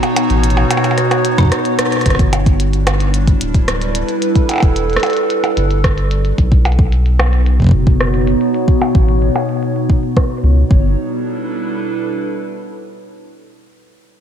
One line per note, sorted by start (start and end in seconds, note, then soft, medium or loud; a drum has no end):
0.00 2.06 B2 medium
0.00 3.79 B3 medium
0.00 2.06 D#4 medium
0.00 3.79 F#4 medium
0.00 3.63 C#5 medium
0.00 closed hi-hat soft
0.00 percussion blips medium
0.16 closed hi-hat medium
0.16 percussion blips medium
0.30 0.65 A1 medium
0.30 closed hi-hat soft
0.44 closed hi-hat medium
0.50 closed hi-hat soft
0.57 percussion blips medium
0.71 closed hi-hat medium
0.71 percussion blips medium
0.77 percussion blips medium
0.84 closed hi-hat soft
0.84 percussion blips medium
0.91 percussion blips soft
0.98 cross-stick medium
0.98 closed hi-hat medium
1.11 cross-stick medium
1.11 closed hi-hat soft
1.11 percussion blips medium
1.25 closed hi-hat loud
1.38 kick loud
1.38 cross-stick medium
1.38 closed hi-hat soft
1.40 kick medium
1.43 kick medium
1.45 kick medium
1.47 kick soft
1.50 kick soft
1.50 cross-stick medium
1.50 closed hi-hat medium
1.65 closed hi-hat soft
1.79 cross-stick loud
1.79 closed hi-hat medium
1.92 cross-stick soft
1.92 closed hi-hat soft
1.97 cross-stick soft
2.01 cross-stick medium
2.01 closed hi-hat soft
2.06 3.35 G1 loud
2.06 6.38 G3 medium
2.06 kick medium
2.06 cross-stick medium
2.06 closed hi-hat medium
2.10 cross-stick medium
2.10 closed hi-hat soft
2.15 6.38 D4 medium
2.15 cross-stick medium
2.19 kick loud
2.19 closed hi-hat soft
2.33 closed hi-hat medium
2.33 percussion blips medium
2.46 kick loud
2.46 closed hi-hat soft
2.60 closed hi-hat medium
2.66 6.38 E4 medium
2.73 closed hi-hat soft
2.87 cross-stick loud
2.87 closed hi-hat medium
2.87 percussion blips medium
3.00 closed hi-hat soft
3.08 7.29 B4 medium
3.14 closed hi-hat medium
3.27 kick loud
3.27 closed hi-hat soft
3.41 4.03 D1 medium
3.41 closed hi-hat loud
3.49 7.98 A4 medium
3.54 kick loud
3.54 closed hi-hat soft
3.68 cross-stick loud
3.68 closed hi-hat medium
3.82 closed hi-hat soft
3.95 closed hi-hat medium
4.09 closed hi-hat soft
4.22 closed hi-hat medium
4.36 kick loud
4.36 closed hi-hat soft
4.49 closed hi-hat medium
4.49 percussion blips soft
4.51 percussion blips soft
4.54 percussion blips soft
4.56 percussion blips medium
4.58 percussion blips medium
4.60 4.97 E1 medium
4.60 kick loud
4.60 closed hi-hat soft
4.60 percussion blips medium
4.76 closed hi-hat medium
4.90 closed hi-hat soft
4.93 cross-stick loud
4.93 closed hi-hat soft
4.96 closed hi-hat soft
5.00 closed hi-hat soft
5.03 closed hi-hat medium
5.03 percussion blips medium
5.06 closed hi-hat soft
5.10 closed hi-hat soft
5.13 closed hi-hat soft
5.17 closed hi-hat soft
5.30 closed hi-hat medium
5.44 closed hi-hat soft
5.44 percussion blips medium
5.57 6.33 G1 loud
5.57 closed hi-hat loud
5.71 closed hi-hat soft
5.84 kick loud
5.84 cross-stick loud
5.84 closed hi-hat medium
5.98 closed hi-hat soft
6.11 closed hi-hat medium
6.25 closed hi-hat soft
6.38 7.68 B1 loud
6.38 10.71 B2 medium
6.38 kick medium
6.38 closed hi-hat medium
6.52 10.71 D#4 medium
6.52 kick loud
6.52 closed hi-hat soft
6.56 10.71 B3 medium
6.65 closed hi-hat medium
6.65 percussion blips medium
6.72 closed hi-hat soft
6.79 10.71 F#4 medium
6.79 kick loud
6.92 closed hi-hat medium
7.06 closed hi-hat soft
7.17 10.71 C#5 medium
7.17 cross-stick loud
7.17 closed hi-hat medium
7.17 percussion blips medium
7.33 closed hi-hat soft
7.46 closed hi-hat medium
7.60 kick medium
7.60 closed hi-hat soft
7.62 kick medium
7.64 kick medium
7.67 kick medium
7.67 closed hi-hat medium
7.69 kick loud
7.71 8.35 F#1 medium
7.71 kick loud
7.87 kick loud
7.87 closed hi-hat soft
8.00 cross-stick loud
8.00 closed hi-hat medium
8.14 closed hi-hat soft
8.27 closed hi-hat medium
8.41 closed hi-hat soft
8.54 closed hi-hat medium
8.68 kick loud
8.68 closed hi-hat soft
8.82 closed hi-hat medium
8.82 percussion blips medium
8.95 9.30 A1 medium
8.95 kick loud
8.95 closed hi-hat soft
9.09 closed hi-hat medium
9.22 closed hi-hat soft
9.36 closed hi-hat medium
9.36 percussion blips medium
9.49 closed hi-hat soft
9.63 closed hi-hat medium
9.76 closed hi-hat soft
9.90 kick medium
9.90 closed hi-hat medium
10.03 closed hi-hat soft
10.17 kick loud
10.17 cross-stick loud
10.17 closed hi-hat medium
10.30 closed hi-hat soft
10.34 closed hi-hat soft
10.37 closed hi-hat soft
10.40 10.63 C#2 loud
10.40 closed hi-hat soft
10.44 closed hi-hat medium
10.47 closed hi-hat soft
10.51 closed hi-hat soft
10.54 closed hi-hat soft
10.71 10.96 G1 loud
10.71 12.83 G3 medium
10.71 kick loud
10.79 12.83 D4 medium
10.87 12.83 E4 medium
10.95 12.83 A4 medium
11.03 12.83 B4 medium